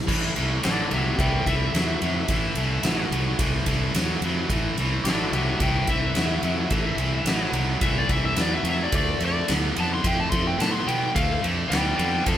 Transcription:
0.07 A1 A2 E3, kick, crash
0.36 C2 A2 E3, ride
0.63 A1 A2 F#3 A4 D5, snare, ride
0.90 C2 A2 F#3 G4 E5, ride
1.18 C2 A2 E3 E5 G5, kick, ride
1.46 C2 A2 E3 E5, kick, ride
1.73 E2 A2 F#3, snare, ride
2.01 F2 A2 F#3, ride
2.28 A1 A2 E3, kick, ride
2.55 C2 A2 E3, ride
2.83 A1 A2 F#3, snare, ride
3.11 C2 A2 F#3, ride
3.39 C2 A2 E3, kick, ride
3.66 C2 A2 E3, kick, ride
3.94 E2 A2 F#3, snare, ride
4.21 F2 A2 F#3, ride
4.50 A1 A2 E3, kick, ride
4.77 C2 A2 E3, ride
5.04 A1 A2 F#3 A4 D5, snare, ride
5.32 C2 A2 F#3 G4 E5, ride
5.60 C2 A2 E3 E5 G5, kick, ride
5.87 C2 A2 E3 E5, kick, ride
6.15 E2 A2 F#3, snare, ride
6.43 F2 A2 F#3, ride
6.70 A1 A2 E3, kick, ride
6.97 C2 A2 E3, ride
7.25 A1 A2 F#3, snare, ride
7.52 C2 A2 F#3, ride
7.81 C2 A2 E3 E5, kick, ride
7.98 D5
8.09 C2 A2 E3 E5, kick, ride
8.25 E5
8.36 E2 A2 F#3, snare, ride
8.42 D5
8.54 E5
8.63 F2 A2 F#3, ride
8.70 E5
8.83 D5
8.91 D2 D3 A3, kick, ride
8.97 D5
9.19 F2 D3 A3, ride
9.25 D5
9.48 D2 D3 B3, snare, ride
9.76 F2 D3 B3, ride
9.80 A5
9.94 C6
10.03 F2 D3 A3 G5, kick, ride
10.20 A5
10.31 F2 D3 A3 C6, kick, ride
10.47 G5
10.59 A2 D3 B3 A5, snare, ride
10.73 C6
10.86 B2 D3 B3 G5, ride
11.15 D2 D3 A3 F5, kick, ride
11.42 F2 D3 A3, ride
11.69 D2 D3 B3 D5 G5, ride
11.73 snare
11.96 F2 D3 B3 D5 G5, ride
12.25 F2 D3 A3 C5 A5, kick, ride

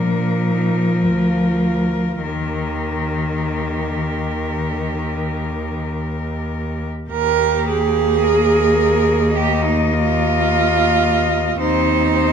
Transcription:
Already playing: A#2 F3 D4 A#4
0.49 D#4
1.06 D2 F4
2.24 D#2 D#3 G4 A#4
7.10 D#2 A#3 G4 A#4
7.68 G#4
8.23 A#4
9.35 G4 D#5
9.64 D#4
9.92 F4
11.59 D#2 C4 D#4 C5
12.13 C5

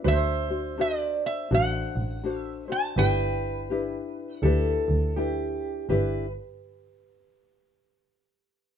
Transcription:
0.04 D2 D4 F#4 A4 C5 E5
0.49 D4 F#4 C5
0.78 D4 F#4 A4 C5 D#5
0.98 D5
1.26 E5
1.51 A1 D4 F#4 A4 C5 F#5
1.96 A1
2.23 D4 F#4 A4 C5
2.37 E5
2.68 D4 F#4 C5 A5
2.96 G1 D4 E4 G4 B4 G5
3.70 D4 E4 G4 B4
4.35 F#5
4.42 D2 D4 E4 G4 A4 B4
4.88 D2
5.16 D4 E4 G4 B4
5.89 G1 D4 E4 G4 B4

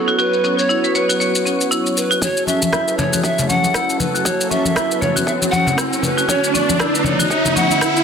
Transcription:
Already playing: F#3 B3 F#4 A4 C#5
0.08 F#4, shaker
0.19 F#4 B4, shaker
0.33 shaker
0.44 C#4, shaker
0.58 C#5, shaker
0.69 E4, shaker
0.84 B4, shaker
0.95 B4 C#5, shaker
1.09 F#4, shaker
1.20 C#5, shaker
1.35 shaker
1.46 C#4, shaker
1.61 shaker
1.71 E4, shaker
1.86 shaker
1.96 B4, shaker
2.11 F#4, shaker
2.22 F#1 F#3 C#4 F#4 G#4 A4 C#5, kick, riser, muted conga, shaker
2.37 shaker
2.47 C#4 E5, muted conga, shaker
2.62 F#2, high conga, shaker
2.73 E4, kick, cross-stick, muted conga, shaker
2.87 B4, shaker
2.98 C#2 C#5, high conga, low conga, shaker
3.13 F#4, muted conga, high conga, shaker
3.23 C#5 E5, kick, shaker
3.38 F#1, muted conga, low conga, shaker
3.48 C#4 F#5, high conga, shaker
3.64 muted conga, shaker
3.74 F#1 E4, kick, cross-stick, shaker
3.89 shaker
3.99 F#1 B4, muted conga, high conga, low conga, shaker
4.14 F#4, shaker
4.25 F#1 F#4 C#5, kick, muted conga, shaker
4.41 shaker
4.50 C#4 E5, muted conga, shaker
4.65 F#2, high conga, shaker
4.76 E4, kick, cross-stick, muted conga, shaker
4.91 B4, shaker
5.01 C#2 C#5, high conga, low conga, shaker
5.16 F#4, muted conga, high conga, shaker
5.26 C#5 E5, kick, shaker
5.42 F#1, muted conga, shaker
5.51 C#4 F#5, high conga, shaker
5.67 muted conga, low conga, shaker
5.78 F#1 E4, kick, cross-stick, shaker
5.93 shaker
6.02 F#1 B4, muted conga, low conga, shaker
6.17 F#4, shaker
6.28 F#1 D3 A3 B3 F#4 C#5, kick, muted conga, shaker
6.44 shaker
6.53 C#4 D5, muted conga, shaker
6.69 F#2, high conga, shaker
6.79 E4, kick, cross-stick, muted conga, shaker
6.94 B4, shaker
7.04 C#2 C#5 D5, high conga, low conga, shaker
7.19 F#4, muted conga, high conga, shaker
7.30 C#5 E5, kick, shaker
7.45 F#1, muted conga, low conga, shaker
7.56 C#4 F#5, high conga, shaker
7.70 muted conga, shaker
7.81 E4, kick, cross-stick, shaker
7.96 shaker

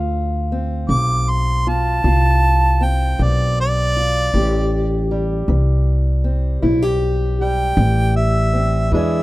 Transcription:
Already playing: D2 D3 F4
0.52 C4
0.89 B1 A3 D6
1.30 C6
1.67 F4 A5
2.04 C2 D3 F4
2.81 C4 G5
3.19 B1 A3
3.23 D5
3.61 D5
3.96 F4
4.34 A1 A2 G4
5.11 G3
5.48 C2 E3
6.24 C4
6.62 B1 A2 E4
6.82 G4
7.41 G3 G5
7.77 A1 E3
8.16 E5
8.54 C4
8.92 E2 E3 G#3 D4 G#4 E5

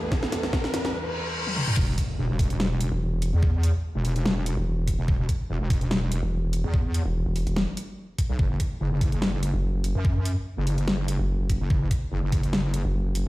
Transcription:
Already playing: E2 E3 G3 A3 B4, riser
0.12 kick, snare
0.23 snare
0.32 snare, closed hi-hat
0.43 snare
0.53 kick, snare
0.64 snare
0.74 snare, closed hi-hat
0.85 snare
0.94 reverse cymbal
1.47 high tom
1.57 mid tom
1.68 mid tom
1.77 E1, kick, crash, impact
1.98 kick, closed hi-hat
2.19 E1
2.30 E1
2.39 kick, open hi-hat
2.50 closed hi-hat
2.60 snare
2.81 closed hi-hat
2.92 E1
3.22 closed hi-hat
3.33 E2
3.43 kick
3.63 closed hi-hat
3.95 E1
4.05 open hi-hat
4.16 closed hi-hat
4.26 snare
4.46 closed hi-hat
4.57 E1
4.87 kick, closed hi-hat
4.99 E1
5.08 E1, kick
5.29 kick, closed hi-hat
5.50 E1
5.61 E1
5.70 kick, open hi-hat
5.81 closed hi-hat
5.91 snare
6.12 closed hi-hat
6.23 E1
6.53 closed hi-hat
6.64 E2
6.74 kick
6.94 closed hi-hat
7.05 E1
7.26 E1
7.36 open hi-hat
7.47 E1, closed hi-hat
7.56 snare
7.77 closed hi-hat
8.18 kick, closed hi-hat
8.29 B1
8.39 F#1, kick
8.60 kick, closed hi-hat
8.81 F#1
8.92 F#1
9.01 kick, open hi-hat
9.12 closed hi-hat
9.22 snare
9.43 closed hi-hat
9.54 F#1
9.84 closed hi-hat
9.95 F#2
10.05 kick
10.25 closed hi-hat
10.57 F#1
10.67 open hi-hat
10.78 closed hi-hat
10.88 snare
11.08 closed hi-hat
11.19 F#1
11.50 kick, closed hi-hat
11.61 F#1
11.70 F#1, kick
11.91 kick, closed hi-hat
12.12 F#1
12.23 F#1
12.32 kick, open hi-hat
12.43 closed hi-hat
12.53 snare
12.74 closed hi-hat
12.85 F#1
13.15 closed hi-hat

